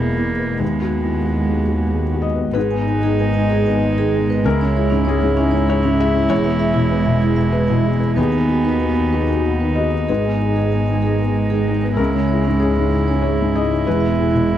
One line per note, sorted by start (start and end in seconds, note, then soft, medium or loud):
0.00 0.61 E1 medium
0.00 0.57 E2 medium
0.00 0.63 B2 soft
0.00 2.55 G#3 medium
0.00 0.61 A#3 medium
0.00 0.57 B3 medium
0.00 0.64 D#4 soft
0.00 0.17 E4 soft
0.00 0.30 G#4 soft
0.00 0.57 G#4 soft
0.00 0.61 E5 medium
0.17 0.52 E4 soft
0.38 0.61 B3 soft
0.59 2.54 D#2 soft
0.59 2.51 D#2 soft
0.59 2.34 G#3 soft
0.59 2.32 B3 soft
0.59 2.50 G#4 medium
0.59 2.54 F#5 medium
0.82 1.17 F#4 soft
1.04 1.25 E4 soft
1.25 1.60 F#4 soft
1.47 1.82 D#3 soft
1.69 2.03 F#4 soft
1.91 2.25 G#4 soft
2.14 2.47 F#4 soft
2.22 2.52 D#5 medium
2.35 2.56 B3 soft
2.53 4.46 G#1 medium
2.53 4.41 G#2 medium
2.53 6.27 G#3 medium
2.53 4.41 B3 medium
2.53 4.48 D#4 medium
2.53 8.13 G#4 medium
2.53 2.64 G#4 medium
2.53 4.40 B4 medium
2.53 4.41 D#5 medium
2.71 2.97 B3 soft
2.71 2.80 G#5 medium
2.87 3.02 D#4 soft
2.87 3.02 G#4 soft
2.87 2.97 G#5 medium
3.03 3.29 D#3 soft
3.03 3.13 G#4 medium
3.19 3.45 B3 soft
3.19 3.29 G#5 medium
3.34 3.61 D#3 soft
3.34 3.44 G#5 medium
3.50 3.65 D#4 soft
3.50 3.59 G#4 medium
3.50 3.65 G#4 soft
3.66 4.17 B3 soft
3.66 3.76 G#5 medium
3.83 3.92 D#5 medium
3.98 4.23 D#3 medium
3.98 4.07 G#4 medium
4.13 4.28 D#4 soft
4.13 4.28 G#4 medium
4.29 4.45 B3 soft
4.29 4.39 B4 medium
4.44 6.31 C#2 medium
4.44 6.26 C#2 medium
4.44 4.54 C#4 medium
4.44 6.30 C#4 medium
4.44 8.18 E4 medium
4.44 5.03 A#4 medium
4.44 8.17 E5 medium
4.61 4.86 C#4 soft
4.61 4.70 C#5 medium
4.76 4.90 E4 soft
4.76 4.90 G#4 medium
4.76 4.86 C#5 medium
4.90 5.16 G#2 soft
4.90 5.00 C#4 medium
5.05 5.31 C#4 medium
5.05 5.37 G#4 medium
5.05 5.15 C#5 medium
5.21 5.47 G#2 medium
5.21 5.31 C#5 medium
5.37 5.46 C#4 medium
5.37 5.52 E4 medium
5.37 5.52 G#4 medium
5.51 6.03 C#4 soft
5.51 5.61 C#5 medium
5.68 5.78 G#4 medium
5.68 5.98 C#5 medium
5.83 6.09 G#2 medium
5.83 5.93 C#4 medium
6.00 6.13 E4 medium
6.00 6.14 G#4 medium
6.00 6.29 E5 loud
6.13 6.30 C#4 medium
6.13 6.23 E4 medium
6.29 8.18 E1 medium
6.29 8.13 E2 medium
6.29 8.18 G#3 medium
6.29 10.09 B3 medium
6.29 6.38 E4 medium
6.29 7.50 C#5 loud
6.44 6.70 B3 soft
6.44 6.54 E5 medium
6.59 6.74 E4 medium
6.59 6.74 G#4 medium
6.59 6.69 E5 medium
6.74 7.01 B2 medium
6.74 6.84 E4 medium
6.89 7.16 B3 medium
6.89 6.99 E5 medium
7.05 7.32 B2 medium
7.05 7.15 E5 medium
7.20 7.30 E4 medium
7.20 7.37 E4 soft
7.20 7.37 G#4 medium
7.36 7.88 B3 soft
7.36 7.46 E5 medium
7.52 8.12 B4 medium
7.52 7.62 B4 medium
7.67 7.95 B2 medium
7.67 7.78 E4 medium
7.84 7.99 E4 soft
7.84 7.99 G#4 soft
8.00 8.16 B3 soft
8.00 8.11 G#4 soft
8.16 10.10 D#2 medium
8.16 10.05 D#2 medium
8.16 9.89 B3 medium
8.16 11.95 D#4 medium
8.16 10.09 F#4 medium
8.16 8.48 G#4 medium
8.16 8.26 B4 medium
8.16 11.98 D#5 medium
8.32 8.58 B3 soft
8.32 8.42 G#5 medium
8.49 8.63 F#4 soft
8.49 8.63 G#4 soft
8.49 8.58 G#5 soft
8.64 8.90 D#3 soft
8.64 8.74 B4 medium
8.80 9.07 B3 soft
8.80 8.90 G#5 soft
8.96 9.23 D#3 soft
8.96 9.06 G#5 soft
9.13 9.27 F#4 soft
9.13 9.28 G#4 soft
9.13 9.22 B4 medium
9.28 9.80 B3 soft
9.28 9.38 G#5 soft
9.45 9.55 F#5 soft
9.60 9.87 D#3 soft
9.60 9.70 B4 medium
9.76 9.92 F#4 soft
9.76 9.92 G#4 soft
9.76 10.06 D#5 medium
9.92 10.09 B3 soft
9.92 10.02 D#5 soft
10.08 11.99 G#1 medium
10.08 11.95 G#2 medium
10.08 14.58 G#3 medium
10.08 13.82 G#3 medium
10.08 14.58 G#4 medium
10.08 10.18 G#4 medium
10.08 11.94 B4 medium
10.25 10.51 B3 soft
10.25 10.35 G#5 soft
10.41 10.55 D#4 soft
10.41 10.56 G#4 soft
10.41 10.51 G#5 soft
10.56 10.82 D#3 soft
10.56 10.66 G#4 medium
10.72 10.98 B3 soft
10.72 10.82 G#5 soft
10.87 11.14 D#3 soft
10.87 10.97 G#5 soft
11.02 11.19 D#4 soft
11.02 11.12 G#4 medium
11.07 11.20 G#4 soft
11.19 11.71 B3 soft
11.19 11.29 G#5 soft
11.36 11.45 D#5 soft
11.50 11.76 D#3 soft
11.50 11.60 G#4 medium
11.68 11.82 D#4 soft
11.68 11.82 G#4 soft
11.82 11.99 B3 soft
11.82 11.92 B4 soft
11.97 13.89 C#2 medium
11.97 13.83 C#2 medium
11.97 12.07 C#4 medium
11.97 14.58 E4 medium
11.97 14.58 E4 soft
11.97 12.56 A#4 medium
12.13 12.40 C#4 soft
12.13 12.23 C#5 soft
12.28 12.45 E4 soft
12.28 12.44 G#4 soft
12.28 12.38 C#5 medium
12.44 12.72 G#2 soft
12.44 12.54 C#4 medium
12.59 12.87 C#4 soft
12.59 12.93 G#4 medium
12.59 12.69 C#5 soft
12.75 13.03 G#2 soft
12.75 12.85 C#5 soft
12.92 13.02 C#4 medium
12.92 13.08 E4 soft
12.92 13.08 G#4 soft
13.08 13.59 C#4 soft
13.08 13.17 C#5 medium
13.22 13.33 G#4 medium
13.22 13.52 C#5 medium
13.38 13.66 G#2 soft
13.38 13.48 C#4 medium
13.55 13.70 E4 soft
13.55 13.70 G#4 soft
13.55 13.84 D#5 medium
13.70 13.87 C#4 soft
13.70 13.79 E4 medium
13.85 14.58 E1 medium
13.85 14.58 E2 medium
13.85 14.58 G#3 medium
13.85 13.94 E4 medium
13.85 14.58 B4 medium
14.00 14.10 E5 medium
14.05 14.27 B3 soft
14.15 14.25 E5 soft
14.20 14.32 E4 soft
14.20 14.32 G#4 soft
14.31 14.58 B2 soft
14.31 14.41 E4 medium
14.47 14.58 B3 soft
14.47 14.56 E5 soft